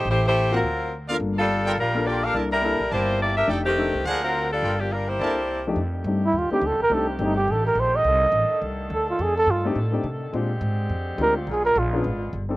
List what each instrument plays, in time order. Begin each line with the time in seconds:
0.05 upright bass A1
0.10 saxophone section A3 E4 G4 C5
0.28 saxophone section A3 E4 G4 C5
0.51 grand piano A#3 C4 F4 F#4, trumpet section D4 A#4 C5 F#5
0.56 saxophone section F#3 C4 F4 A#4
0.63 upright bass D2
1.09 grand piano A#3 D4 F4 A4, trumpet section F4 A#4 D5 F5
1.20 upright bass G1
1.39 saxophone section G3 D4 F4 A4
1.66 trumpet section F4 A#4 D5 G5
1.78 upright bass A#1, saxophone section G3 D4 F4 A#4
1.94 grand piano A#3 D4 F4 A4
2.06 saxophone section A#3 F4 G4 D5, trumpet section F4 A#4 D5 G5
2.24 saxophone section D4 G4 A#4 F5
2.34 upright bass C2, grand piano A#3 D4 E4 A4, trumpet section E4 A#4 D5 A5
2.52 saxophone section G3 D4 E4 A#4
2.62 grand piano A#3 D4 E4 A4
2.79 upright bass B1
2.91 upright bass G1, saxophone section A#3 E4 G4 C5, trumpet section E4 A#4 D5 A5
3.21 saxophone section A#3 E4 G4 D5
3.37 saxophone section D4 G4 A#4 E5
3.47 upright bass F1, grand piano A3 D4 D#4 G4, trumpet section D#4 A4 D5 G5
3.65 saxophone section D#3 A3 C4 G4
3.78 grand piano A3 D4 D#4 A4
3.94 upright bass C2
4.04 upright bass D2, saxophone section F3 A#3 D4 G#4, trumpet section D4 A#4 C5 F#5
4.23 saxophone section F#3 C4 F4 A#4
4.52 saxophone section G3 D4 F4 A4
4.62 upright bass G1, trumpet section F4 A#4 D5 G5
4.80 saxophone section F3 A#3 D4 G4
4.92 saxophone section G3 D4 F4 A#4
5.08 saxophone section A#3 E4 G4 C5
5.20 upright bass C2, grand piano A#3 D4 E4 A4, trumpet section E4 A#4 D5 A5
5.67 grand piano F2 A3 D4 D#4 G4
5.76 upright bass F2, saxophone section D3 D#3 A3 G4
6.04 upright bass G2, grand piano A3 C4 D4 D#4 G4
6.26 muted trumpet E4
6.32 upright bass D#2
6.38 muted trumpet F4
6.51 grand piano A3 C4 D4 D#4 G4, muted trumpet G4, muted upright bass stroke
6.61 upright bass D2
6.66 muted trumpet A4
6.72 upright bass C2
6.80 upright bass A1, muted trumpet A#4
6.90 upright bass C2, grand piano A3 C4 D4 D#4 G4, muted trumpet A4
7.09 muted trumpet C4
7.19 upright bass G1, grand piano A3 C4 D4 D#4 G4
7.23 muted trumpet D#4
7.36 muted trumpet G4
7.48 upright bass A1, muted trumpet A4
7.67 muted trumpet A#4
7.75 upright bass A#1
7.80 muted trumpet C5
7.96 muted trumpet D#5
8.05 upright bass C2, saxophone section A4
8.32 upright bass A1
8.49 muted upright bass stroke
8.62 upright bass C2
8.90 upright bass D2, muted trumpet A4
9.10 muted trumpet F4
9.19 upright bass F2, muted trumpet G#4
9.37 muted trumpet A4
9.47 upright bass G2, muted trumpet F4
9.64 grand piano A3 C4 D4 D#4 G4
9.75 upright bass A2
9.92 grand piano A3 C4 D4 D#4 G4
10.04 upright bass C3
10.32 upright bass A#2, saxophone section D3 G#3 C4 G4, grand piano G#3 C4 D4 F4 G4
10.61 upright bass G#2
10.89 upright bass F2
11.18 upright bass D2, grand piano G#3 C4 D4 F4 G4
11.22 muted trumpet A#4
11.37 muted trumpet F4
11.47 upright bass B1, saxophone section G#3 B3 F4
11.51 muted trumpet G#4
11.65 muted trumpet A#4
11.75 upright bass A#1, muted trumpet F4
11.92 grand piano B3 C#4 D4 F4 G#4
12.04 upright bass G#1
12.33 upright bass G1
12.49 grand piano C4 D4 D#4 G4 A4